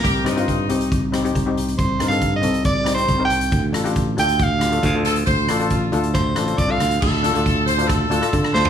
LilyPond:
<<
  \new Staff \with { instrumentName = "Soprano saxophone" } { \time 4/4 \key d \phrygian \tempo 4 = 138 bes'4. r2 r8 | \tuplet 3/2 { c''4 f''8~ f''8 ees''4 d''4 c''8~ c''8 g''4~ } | g''8 r4 g''8 f''4 f''8 r8 | r2 c''4 \tuplet 3/2 { d''8 f''4 } |
r2. r8 c''8 | }
  \new Staff \with { instrumentName = "Horn section" } { \time 4/4 \key d \phrygian g'8 ees'2 r4. | r1 | r2. r8 a'8 | c''4 f'8. r2 r16 |
a'4. c''8 a'2 | }
  \new Staff \with { instrumentName = "Steel pan" } { \time 4/4 \key d \phrygian r8 <c' ees' g'>16 <c' ees' f'>8 r16 <c' ees' g'>8 r8 <c' ees' g'>16 <c' ees' g'>16 r16 <c' ees' g'>8. | r8 <c' ees' bes'>16 <c' ees' a'>8 r16 <c' ees' a'>8 r8 <c' ees' g'>16 <c' ees' g'>16 r16 <c' ees' bes'>8. | r8 <d' f' a'>16 <d' f' g'>8 r16 <d' f' a'>8 r8 <d' f' g'>16 <d' f' a'>16 r16 <d' f' a'>8. | r8 <d' f' a'>16 <d' f' a'>8 r16 <d' f' a'>8 r8 <d' f' a'>16 <d' f' a'>16 r16 <d' f' a'>8. |
r8 <d' f' a'>16 <d' f' a'>8 r8 <d' f' a'>8 r16 <d' f' a'>16 <d' f' a'>8 r16 <d' f' a'>8 | }
  \new Staff \with { instrumentName = "Fingered electric bass" } { \clef bass \time 4/4 \key d \phrygian c,8 g,4 c,4. c,4 | c,8 g,4 c,4. c,4 | d,8 a,,4 d,4. d,4 | d,8 a,,4 d,4 a,,8 c,8 d,8 |
d,8. d,4.~ d,16 d,16 r16 d8 d,8 | }
  \new DrumStaff \with { instrumentName = "Drums" } \drummode { \time 4/4 <hh bd>8 <hh ss>16 hh16 <hh bd>8 hh16 hh16 <hh bd>8 <hh ss>16 hh16 <hh bd>8 hh16 hh16 | <hh bd>8 <hh ss>16 hh16 <hh bd>8 hh16 hh16 <hh bd>8 <hh ss>16 hh16 <hh bd>8 hh16 hh16 | <hh bd>8 <hh ss>16 hh16 <hh bd>8 hh16 hh16 <hh bd>8 <hh ss>16 hh16 <hh bd>8 hh16 hh16 | <hh bd>8 <hh ss>16 hh16 <hh bd>8 hh16 hh16 <hh bd ss>8 <hh ss>16 hh16 <hh bd>8 <hh ss>16 hh16 |
<cymc bd>8 hh16 hh16 <hh bd>8 hh16 hh16 <hh bd ss>8 hh16 <hh ss>16 <hh bd>16 ss16 sn16 tomfh16 | }
>>